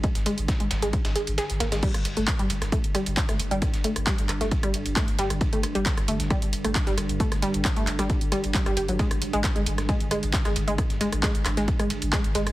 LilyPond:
<<
  \new Staff \with { instrumentName = "Synth arpeggio sound" } { \clef bass \time 4/4 \key c \dorian \tempo 4 = 134 aes16 r16 aes16 r8 aes16 r16 aes16 r8 aes'16 r16 aes'16 r16 bes16 aes16 | g16 r8 a16 r16 g16 r8 a16 r16 g16 r8 a16 r16 g16 | r8 a16 r16 g16 r8 a16 r16 g16 r8 a16 r16 g16 r16 | r16 a16 r16 g16 r8 a16 r16 g16 r8 a16 r16 g16 r8 |
a16 r16 g16 r8 a16 r16 g16 r8 g16 r16 g16 g16 g'16 fis16 | aes16 r8 aes16 r16 aes16 r8 aes16 r16 aes16 r8 aes16 r16 aes16 | r8 aes16 r16 aes16 r8 aes16 r16 aes16 r8 aes16 r16 aes16 r16 | }
  \new Staff \with { instrumentName = "Ambient pad" } { \clef bass \time 4/4 \key c \dorian <g, d>1 | <g, d>1~ | <g, d>1~ | <g, d>1~ |
<g, d>1~ | <g, d>1~ | <g, d>1 | }
  \new Staff \with { instrumentName = "Sub bass" } { \clef bass \time 4/4 \key c \dorian r16 aes,,16 r16 aes,,16 r16 aes,,16 aes,,16 aes,,16 r16 aes,,16 r16 aes,,16 r16 aes,,16 aes,,16 aes,,16 | r16 g,,16 r16 g,,16 r16 g,,16 g,,16 g,,16 r16 g,,16 r16 g,,16 r16 g,,16 g,,16 g,,16 | r16 g,,16 r16 g,,16 r16 g,,16 g,,16 g,,16 r16 g,,16 r16 g,,16 r16 g,,16 g,,16 g,,16 | r16 g,,16 r16 g,,16 r16 g,,16 g,,16 g,,16 r16 g,,16 r16 g,,16 r16 g,,16 g,,16 g,,16 |
r16 g,,16 r16 g,,16 r16 g,,16 g,,16 g,,16 r16 g,,16 r16 g,,16 r16 g,,16 g,,16 g,,16 | r16 aes,,16 r16 aes,,16 r16 aes,,16 aes,,16 aes,,16 r16 aes,,16 r16 aes,,16 r16 aes,,16 aes,,16 aes,,16 | r16 aes,,16 r16 aes,,16 r16 aes,,16 aes,,16 aes,,16 r16 aes,,16 r16 aes,,16 r16 aes,,16 aes,,16 aes,,16 | }
  \new DrumStaff \with { instrumentName = "Drums" } \drummode { \time 4/4 <hh bd cymr>16 <hh sn>16 <hho cymr>16 hh16 <hh bd cymr sn>16 hh16 <hho cymr sn>16 <hh sn>16 <hh bd cymr>16 <hh cymr sn>16 <hho sn>16 <hh cymr>16 <hh cymr sn>16 <hh sn>16 <hho cymr sn>16 <hh cymr sn>16 | <cymc hh bd cymr>16 <hh ss>16 <hho cymr>16 hh16 <hc hh bd cymr ss sn>16 hh16 <hho cymr>16 <hh ss sn>16 <hh bd cymr>16 hh16 <hho cymr ss>16 <hh cymr>16 <hc hh bd cymr sn>16 <hh ss sn>16 <hho cymr>16 hh16 | <hh bd cymr ss>16 <hh sn>16 <hho cymr>16 <hh ss>16 <hc hh bd cymr sn>16 hh16 <hc hho cymr ss>16 <hh sn>16 <hh bd cymr>16 <hh ss>16 <hho cymr>16 <hh cymr>16 <hc hh bd cymr ss sn>16 hh16 <hho cymr sn>16 <hh cymr ss>16 | <hh bd cymr>16 hh16 <hho cymr ss>16 hh16 <hc hh bd cymr sn>16 <hh ss>16 <hho cymr>16 <hh sn>16 <hh bd cymr ss>16 hh16 <hho cymr>16 <hh cymr ss>16 <hc hh bd cymr sn>16 <hh sn>16 <hho cymr ss>16 hh16 |
<hh bd cymr>16 <hh ss sn>16 <hho cymr>16 hh16 <hc hh bd cymr ss sn>16 hh16 <hc hho cymr>16 <hh ss sn>16 <hh bd cymr>16 hh16 <hho cymr ss>16 <hh cymr>16 <hc hh bd cymr sn>16 <hh ss>16 <hho cymr>16 hh16 | <hh bd cymr>16 <hh ss>16 <hho cymr>16 hh16 <hc hh bd cymr ss sn>16 hh16 <hho cymr>16 <hh ss sn>16 <hh bd cymr>16 hh16 <hho cymr ss>16 <hh cymr>16 <hc hh bd cymr sn>16 <hh ss sn>16 <hho cymr>16 hh16 | <hh bd cymr ss>16 <hh sn>16 <hho cymr>16 <hh ss>16 <hc hh bd cymr sn>16 hh16 <hc hho cymr ss>16 <hh sn>16 <hh bd cymr>16 <hh ss>16 <hho cymr>16 <hh cymr>16 <hc hh bd cymr ss sn>16 hh16 <hho cymr sn>16 <hh cymr ss>16 | }
>>